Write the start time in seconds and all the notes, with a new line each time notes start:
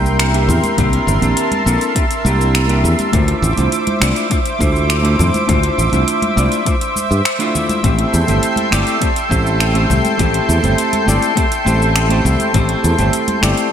Already playing: C2 A#3 C4 D4 E4 G4 A#4 E5 G5 C6
0.06 shaker
0.19 finger snap, closed hi-hat, shaker
0.33 A#3 C4 D4 E4 G4, closed hi-hat
0.48 E2, low conga, shaker
0.64 closed hi-hat, high conga, shaker
0.77 C2 A#3 C4 D4 E4 G4 A5, kick, closed hi-hat, low conga, shaker
0.93 closed hi-hat
1.07 G1, low conga, shaker
1.21 A#1 A#3 C4 D4 E4 G4, closed hi-hat, low conga, shaker
1.37 closed hi-hat, shaker
1.52 closed hi-hat, high conga
1.66 A#1 A#3 C4 D4 E4 A4, shaker
1.81 closed hi-hat, shaker
1.95 A#3 C4 D4 E4 G4, kick, closed hi-hat, shaker
2.11 closed hi-hat, shaker
2.24 C2 A#3 C4 D4 E4 G4, high conga, shaker
2.41 shaker
2.55 finger snap, closed hi-hat, shaker
2.68 A#3 C4 D4 E4 G4, closed hi-hat
2.84 E2, low conga, shaker
2.99 closed hi-hat, high conga, shaker
3.12 D2 A3 D4 E4 F4 C5 D6, kick, closed hi-hat, low conga, shaker
3.28 closed hi-hat
3.42 A1, low conga, shaker
3.56 C2 A3 D4 E4 F4 C5, closed hi-hat, low conga, shaker
3.72 closed hi-hat, shaker
3.87 closed hi-hat, high conga
4.00 C2 A3 D4 E4 F4 D5, finger snap, shaker
4.16 closed hi-hat, shaker
4.30 A3 D4 E4 F4 C5, kick, closed hi-hat, shaker
4.46 closed hi-hat, shaker
4.59 D2 A3 D4 E4 F4 C5, kick, high conga, shaker
4.76 shaker
4.90 finger snap, closed hi-hat, shaker
5.03 A3 D4 E4 F4 C5, closed hi-hat
5.19 F2, low conga, shaker
5.34 closed hi-hat, high conga, shaker
5.47 D2 A3 D4 E4 F4 C5, kick, closed hi-hat, low conga, shaker
5.63 closed hi-hat
5.78 A1, low conga, shaker
5.92 C2 A3 D4 E4 F4 C5, closed hi-hat, low conga, shaker
6.08 closed hi-hat, shaker
6.22 closed hi-hat, high conga
6.36 C2 A3 D4 E4 F4 D5, shaker
6.52 closed hi-hat, shaker
6.65 A3 D4 E4 F4 C5, kick, closed hi-hat, shaker
6.81 closed hi-hat, shaker
6.96 high conga, shaker
7.11 G2, shaker
7.25 finger snap, closed hi-hat, shaker
7.39 A3 D4 E4 F4 C5, closed hi-hat, shaker
7.55 low conga, shaker
7.69 closed hi-hat, high conga, shaker
7.83 A1 A3 C4 E4 G4 A4 C5 G5 C6, kick, closed hi-hat, low conga, shaker
7.99 closed hi-hat
8.14 E2, low conga, shaker
8.27 G1 A3 C4 E4 G4 C5, closed hi-hat, low conga, shaker
8.43 closed hi-hat, shaker
8.56 closed hi-hat, high conga
8.71 G1 A3 C4 E4 G4 D5, finger snap, shaker
8.87 closed hi-hat, shaker
9.01 A3 C4 E4 G4 C5, kick, closed hi-hat, shaker
9.16 closed hi-hat, shaker
9.29 A1 A3 C4 E4 G4 C5, kick, high conga, shaker
9.47 shaker
9.60 finger snap, closed hi-hat, shaker
9.74 A3 C4 E4 G4 C5, closed hi-hat
9.90 C2, low conga, shaker
10.05 closed hi-hat, high conga, shaker
10.18 A1 A3 C4 E4 G4 C5, kick, closed hi-hat, low conga, shaker
10.34 closed hi-hat
10.49 E2, low conga, shaker
10.62 G1 A3 C4 E4 G4 C5, closed hi-hat, low conga, shaker
10.78 closed hi-hat, shaker
10.93 closed hi-hat, high conga
11.06 G1 A3 C4 E4 G4 D5, shaker
11.22 closed hi-hat, shaker
11.36 A3 C4 E4 G4 C5, kick, closed hi-hat, shaker
11.52 closed hi-hat, shaker
11.65 A1 A3 C4 E4 G4 C5, high conga, shaker
11.82 shaker
11.96 finger snap, closed hi-hat, shaker
12.09 A3 C4 E4 G4 C5, closed hi-hat
12.25 C2, low conga, shaker
12.40 closed hi-hat, high conga, shaker
12.53 A1 A3 C4 E4 G4 C5, kick, closed hi-hat, low conga, shaker
12.69 closed hi-hat
12.84 E2, low conga, shaker
12.97 G1 A3 C4 E4 G4 C5, closed hi-hat, low conga, shaker
13.13 closed hi-hat, shaker
13.28 closed hi-hat, high conga
13.41 G1 A3 C4 E4 G4 D5, finger snap, shaker
13.57 closed hi-hat, shaker